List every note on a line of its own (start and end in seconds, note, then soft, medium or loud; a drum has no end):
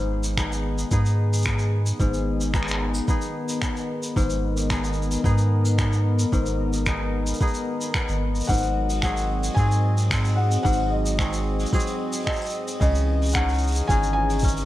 0.00 0.85 G#1 medium
0.00 1.99 G#2 medium
0.00 8.49 D#3 medium
0.00 0.38 B3 medium
0.00 0.38 D#4 medium
0.00 0.39 G#4 medium
0.24 shaker medium
0.33 14.65 D#5 medium
0.33 kick medium
0.38 0.92 B3 medium
0.38 0.92 D#4 medium
0.38 0.92 G#4 medium
0.38 finger snap medium
0.38 shaker medium
0.43 8.49 B3 medium
0.43 4.40 G#4 medium
0.52 shaker medium
0.78 shaker medium
0.91 1.93 G#2 loud
0.91 1.45 B3 medium
0.91 2.54 D#4 medium
0.91 2.54 G#4 medium
0.91 kick medium
0.91 shaker medium
1.06 shaker soft
1.34 shaker medium
1.38 shaker soft
1.42 2.54 B3 medium
1.42 finger snap medium
1.42 kick loud
1.42 shaker soft
1.46 shaker medium
1.59 shaker soft
1.86 shaker medium
2.00 3.01 G#1 medium
2.00 4.15 G#2 medium
2.00 kick medium
2.00 shaker medium
2.14 shaker soft
2.41 shaker medium
2.54 3.08 B3 medium
2.54 3.08 D#4 medium
2.54 3.09 G#4 medium
2.54 finger snap soft
2.54 kick medium
2.54 shaker medium
2.63 finger snap medium
2.68 finger snap medium
2.68 shaker medium
2.94 shaker medium
3.08 3.62 B3 medium
3.08 4.71 D#4 medium
3.08 4.71 G#4 medium
3.08 kick loud
3.08 shaker medium
3.21 shaker soft
3.49 shaker medium
3.62 4.70 B3 medium
3.62 finger snap medium
3.62 kick medium
3.62 shaker medium
3.77 shaker soft
4.03 shaker medium
4.16 5.17 G#1 medium
4.16 6.32 G#2 medium
4.16 kick medium
4.16 shaker medium
4.23 10.21 A#4 medium
4.30 shaker soft
4.57 shaker medium
4.70 5.24 B3 medium
4.70 5.24 D#4 medium
4.70 5.25 G#4 medium
4.70 finger snap medium
4.70 kick loud
4.70 shaker medium
4.84 shaker soft
4.93 shaker soft
5.02 shaker soft
5.12 shaker medium
5.24 6.25 G#2 loud
5.24 5.79 B3 medium
5.24 6.87 D#4 medium
5.24 6.87 G#4 medium
5.24 kick loud
5.24 shaker medium
5.38 shaker soft
5.65 shaker medium
5.78 6.87 B3 medium
5.78 finger snap medium
5.78 kick loud
5.78 shaker medium
5.93 shaker soft
6.19 shaker medium
6.32 7.33 G#1 medium
6.32 8.48 G#2 medium
6.32 kick medium
6.32 shaker medium
6.46 shaker soft
6.73 shaker medium
6.86 7.40 B3 medium
6.86 7.41 D#4 medium
6.86 7.42 G#4 medium
6.86 finger snap medium
6.86 kick medium
6.86 shaker medium
7.27 shaker medium
7.34 shaker medium
7.41 7.95 B3 medium
7.41 9.04 D#4 medium
7.41 8.79 G#4 medium
7.41 kick loud
7.41 shaker medium
7.47 shaker soft
7.54 shaker soft
7.81 shaker medium
7.94 9.10 B3 medium
7.94 finger snap loud
7.94 kick loud
7.94 shaker medium
8.08 8.42 G#1 loud
8.08 shaker soft
8.35 shaker soft
8.40 shaker soft
8.44 9.00 F#5 medium
8.44 shaker soft
8.48 9.50 G#1 medium
8.48 10.64 G#2 medium
8.48 12.81 F#3 medium
8.48 kick medium
8.48 open hi-hat medium
8.48 shaker soft
8.48 shaker medium
8.53 shaker medium
8.58 shaker medium
8.63 shaker soft
8.89 open hi-hat soft
8.89 shaker medium
9.01 9.57 C4 medium
9.01 9.58 F#4 medium
9.01 9.59 G#4 medium
9.01 9.58 F#5 medium
9.01 finger snap medium
9.01 kick loud
9.01 shaker medium
9.13 12.81 C4 medium
9.13 open hi-hat soft
9.13 shaker medium
9.44 open hi-hat medium
9.44 shaker medium
9.54 10.58 G#2 loud
9.54 10.11 C4 medium
9.54 10.33 G#5 loud
9.54 kick loud
9.54 open hi-hat medium
9.54 shaker medium
9.59 11.19 F#4 medium
9.59 11.19 G#4 medium
9.72 shaker soft
9.98 14.65 G#4 medium
9.98 open hi-hat medium
9.98 shaker medium
10.11 11.18 C4 medium
10.11 finger snap loud
10.11 kick medium
10.11 open hi-hat medium
10.11 shaker medium
10.25 open hi-hat soft
10.25 shaker soft
10.36 10.61 F#5 medium
10.51 open hi-hat medium
10.51 shaker medium
10.63 11.66 G#1 medium
10.63 12.86 G#2 medium
10.63 10.89 F#5 loud
10.63 kick medium
10.63 open hi-hat medium
10.63 shaker medium
10.72 shaker soft
10.79 open hi-hat soft
10.90 11.95 D#5 medium
11.06 open hi-hat soft
11.06 shaker medium
11.19 11.73 C4 medium
11.19 11.73 F#4 medium
11.19 11.74 G#4 medium
11.19 finger snap medium
11.19 kick medium
11.19 open hi-hat medium
11.19 shaker medium
11.32 open hi-hat soft
11.32 shaker soft
11.60 open hi-hat medium
11.60 shaker soft
11.66 shaker soft
11.73 12.27 C4 medium
11.73 13.20 F#4 medium
11.73 13.11 G#4 medium
11.73 kick medium
11.73 open hi-hat medium
11.73 shaker medium
11.80 shaker soft
11.86 open hi-hat soft
11.86 shaker soft
12.13 shaker medium
12.20 open hi-hat medium
12.24 13.42 C4 medium
12.24 12.78 D#5 medium
12.24 finger snap loud
12.24 kick medium
12.24 shaker soft
12.32 shaker soft
12.36 shaker soft
12.40 open hi-hat soft
12.40 shaker soft
12.45 shaker soft
12.50 shaker soft
12.67 open hi-hat medium
12.67 shaker medium
12.80 13.82 C#2 medium
12.80 14.65 C#3 medium
12.80 14.65 E3 medium
12.80 13.31 D#5 medium
12.80 kick medium
12.80 open hi-hat medium
12.80 shaker medium
12.95 shaker soft
13.11 14.65 C#4 medium
13.22 open hi-hat soft
13.22 shaker soft
13.26 shaker soft
13.29 shaker soft
13.32 13.90 F#5 loud
13.32 shaker medium
13.35 13.89 C#4 medium
13.35 13.90 D#4 medium
13.35 13.91 G#4 medium
13.35 finger snap medium
13.35 kick medium
13.35 shaker medium
13.48 open hi-hat soft
13.48 shaker soft
13.54 shaker soft
13.58 shaker soft
13.63 shaker soft
13.68 open hi-hat medium
13.68 shaker soft
13.72 shaker soft
13.76 shaker medium
13.87 14.65 G#1 loud
13.87 14.44 C#4 medium
13.87 14.65 D#4 medium
13.87 14.65 G#4 medium
13.87 14.11 G#5 loud
13.87 kick loud
13.87 open hi-hat medium
13.87 shaker medium
14.03 shaker soft
14.13 14.65 G#5 loud
14.30 open hi-hat medium
14.30 shaker soft
14.39 kick loud
14.39 shaker medium
14.43 14.65 C#4 medium
14.43 open hi-hat medium
14.43 shaker medium
14.48 shaker medium
14.56 open hi-hat soft
14.56 shaker soft